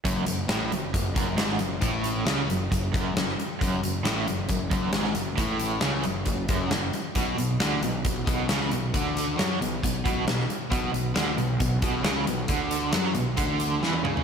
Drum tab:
HH |x-x-x-x-x-x-x-x-|x-x-x-x-x-x-x-x-|x-x-x-x-x-x-x-x-|x-x-x-x-x-x-x-x-|
SD |----o-------oo--|----o-------oo--|----o-------oo--|----o-------o---|
T1 |----------------|----------------|----------------|----------------|
T2 |----------------|----------------|----------------|----------------|
FT |----------------|----------------|----------------|----------------|
BD |o-------o-o-----|o-------o-o-----|o-------o-o-----|o-------o-o-----|

HH |x-x-x-x-x-x-x-x-|x-x-x-x-x-x-x-x-|x-x-x-x-x-x-x-x-|x-x-x-x-x-x-----|
SD |----o-------oo--|----o-------oo--|----o-------o---|----o-------o---|
T1 |----------------|----------------|----------------|-------------o--|
T2 |----------------|----------------|----------------|--------------o-|
FT |----------------|----------------|----------------|---------------o|
BD |o-------o-o-----|o-------o-o-----|o-------o-o-----|o-------o-------|